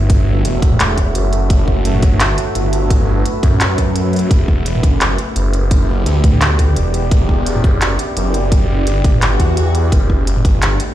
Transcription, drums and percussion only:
0.10 kick, closed hi-hat
0.45 closed hi-hat
0.62 kick, closed hi-hat
0.72 mid tom
0.80 clap, closed hi-hat
0.97 kick, closed hi-hat
1.15 closed hi-hat
1.33 closed hi-hat
1.50 kick, closed hi-hat
1.68 kick
1.85 closed hi-hat
1.95 mid tom
2.02 kick, closed hi-hat
2.20 clap, closed hi-hat
2.38 closed hi-hat
2.55 closed hi-hat
2.73 closed hi-hat
2.90 kick, closed hi-hat
3.26 closed hi-hat
3.43 kick, closed hi-hat
3.52 mid tom
3.61 clap, closed hi-hat
3.78 kick, closed hi-hat
3.96 closed hi-hat
4.13 closed hi-hat
4.16 closed hi-hat
4.19 closed hi-hat
4.31 kick, closed hi-hat
4.48 kick
4.66 closed hi-hat
4.75 mid tom
4.83 kick, closed hi-hat
5.01 clap, closed hi-hat
5.18 closed hi-hat
5.36 closed hi-hat
5.53 closed hi-hat
5.71 kick, closed hi-hat
6.06 closed hi-hat
6.24 kick, closed hi-hat
6.33 mid tom
6.41 clap, closed hi-hat
6.59 kick, closed hi-hat
6.76 closed hi-hat
6.94 closed hi-hat
7.11 kick, closed hi-hat
7.29 kick
7.46 closed hi-hat
7.56 mid tom
7.64 kick, closed hi-hat
7.81 clap, closed hi-hat
7.99 closed hi-hat
8.17 closed hi-hat
8.34 closed hi-hat
8.52 kick, closed hi-hat
8.87 closed hi-hat
9.04 kick, closed hi-hat
9.14 mid tom
9.22 clap, closed hi-hat
9.39 kick, closed hi-hat
9.57 closed hi-hat
9.75 closed hi-hat
9.92 kick, closed hi-hat
10.10 kick
10.27 closed hi-hat
10.37 mid tom
10.45 kick, closed hi-hat
10.62 clap, closed hi-hat
10.80 closed hi-hat

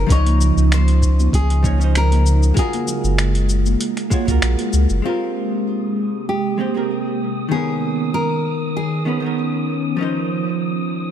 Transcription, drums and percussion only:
0.10 kick, closed hi-hat, cabasa
0.26 closed hi-hat, high conga
0.40 low conga, cabasa
0.58 cabasa
0.72 finger snap, closed hi-hat, high conga, cabasa
0.88 closed hi-hat
1.02 kick, cabasa
1.20 high conga, cabasa
1.33 kick, closed hi-hat, cabasa
1.50 closed hi-hat
1.64 kick, high conga, cabasa
1.81 cabasa
1.95 finger snap, closed hi-hat, cabasa
2.12 closed hi-hat, high conga
2.26 cabasa
2.43 cabasa
2.57 kick, closed hi-hat, cabasa
2.73 closed hi-hat, high conga
2.88 low conga, cabasa
3.04 cabasa
3.18 finger snap, closed hi-hat, high conga, cabasa
3.35 closed hi-hat
3.49 cabasa
3.66 high conga, cabasa
3.81 closed hi-hat, cabasa
3.97 finger snap, closed hi-hat
4.12 kick, high conga, cabasa
4.28 kick, closed hi-hat, cabasa
4.42 finger snap, closed hi-hat, cabasa
4.59 closed hi-hat, high conga
4.73 cabasa
4.90 cabasa

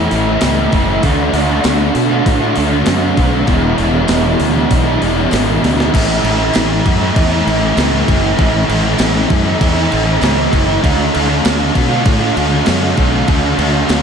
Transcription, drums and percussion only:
0.11 open hi-hat
0.41 snare, open hi-hat, tambourine
0.72 kick, open hi-hat
1.03 kick, open hi-hat
1.34 open hi-hat
1.64 snare, open hi-hat, tambourine
1.95 open hi-hat
2.26 kick, open hi-hat
2.56 open hi-hat
2.86 snare, open hi-hat, tambourine
3.17 kick, open hi-hat
3.47 kick, open hi-hat
3.78 open hi-hat
4.08 snare, open hi-hat, tambourine
4.40 open hi-hat
4.71 kick, open hi-hat
5.02 open hi-hat
5.31 snare, open hi-hat, tambourine
5.64 snare, open hi-hat
5.80 snare
5.94 kick, crash
6.25 crash
6.53 snare, tambourine, crash
6.86 kick, crash
7.16 kick, crash
7.48 crash
7.77 snare, tambourine, crash
8.08 kick, crash
8.39 kick, crash
8.70 crash
8.98 snare, tambourine, crash
9.30 kick, crash
9.61 kick, crash
9.92 crash
10.21 snare, tambourine, crash
10.53 kick, crash
10.84 kick, crash
11.15 crash
11.45 snare, tambourine, crash
11.75 kick, crash
12.06 kick, crash
12.37 crash
12.66 snare, tambourine, crash
12.97 kick, crash
13.28 kick, crash
13.59 crash
13.89 snare, tambourine, crash

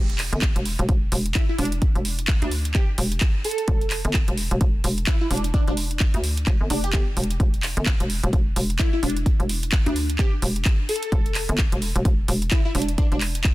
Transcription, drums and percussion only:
0.10 closed hi-hat
0.18 clap, open hi-hat
0.33 closed hi-hat
0.42 kick, clap
0.56 closed hi-hat
0.65 open hi-hat
0.79 closed hi-hat
0.89 kick, closed hi-hat
1.12 open hi-hat
1.26 closed hi-hat
1.35 kick, clap, closed hi-hat
1.58 open hi-hat
1.65 closed hi-hat
1.72 closed hi-hat
1.82 kick, closed hi-hat
1.95 closed hi-hat
2.05 open hi-hat
2.19 closed hi-hat
2.28 kick, clap
2.42 closed hi-hat
2.51 open hi-hat
2.65 closed hi-hat
2.74 kick, clap, closed hi-hat
2.98 open hi-hat
3.12 closed hi-hat
3.21 kick, clap, closed hi-hat
3.44 open hi-hat
3.51 closed hi-hat
3.58 closed hi-hat
3.68 kick, closed hi-hat
3.81 closed hi-hat
3.90 clap, open hi-hat
4.05 closed hi-hat
4.14 kick, clap
4.28 closed hi-hat
4.38 open hi-hat
4.51 closed hi-hat
4.61 kick, closed hi-hat
4.84 open hi-hat
4.98 closed hi-hat
5.07 kick, clap, closed hi-hat
5.31 open hi-hat
5.37 closed hi-hat
5.44 closed hi-hat
5.54 kick, closed hi-hat
5.68 closed hi-hat
5.77 open hi-hat
5.91 closed hi-hat
6.00 kick, clap
6.14 closed hi-hat
6.24 open hi-hat
6.37 closed hi-hat
6.46 kick, clap, closed hi-hat
6.70 open hi-hat
6.84 closed hi-hat
6.93 kick, clap, closed hi-hat
7.17 open hi-hat
7.24 closed hi-hat
7.30 closed hi-hat
7.40 kick, closed hi-hat
7.54 closed hi-hat
7.63 clap, open hi-hat
7.77 closed hi-hat
7.86 kick, clap
8.00 closed hi-hat
8.10 open hi-hat
8.24 closed hi-hat
8.33 kick, closed hi-hat
8.56 open hi-hat
8.70 closed hi-hat
8.79 kick, clap, closed hi-hat
9.03 open hi-hat
9.10 closed hi-hat
9.17 closed hi-hat
9.26 kick, closed hi-hat
9.40 closed hi-hat
9.49 open hi-hat
9.63 closed hi-hat
9.72 kick, clap
9.86 closed hi-hat
9.96 open hi-hat
10.10 closed hi-hat
10.18 kick, clap, closed hi-hat
10.42 open hi-hat
10.56 closed hi-hat
10.65 kick, clap, closed hi-hat
10.89 open hi-hat
10.96 closed hi-hat
11.03 closed hi-hat
11.12 kick, closed hi-hat
11.26 closed hi-hat
11.35 clap, open hi-hat
11.49 closed hi-hat
11.58 kick, clap
11.72 closed hi-hat
11.82 open hi-hat
11.96 closed hi-hat
12.05 kick, closed hi-hat
12.28 open hi-hat
12.42 closed hi-hat
12.51 kick, clap, closed hi-hat
12.75 open hi-hat
12.82 closed hi-hat
12.89 closed hi-hat
12.98 kick, closed hi-hat
13.12 closed hi-hat
13.21 clap, open hi-hat
13.35 closed hi-hat
13.44 kick, clap

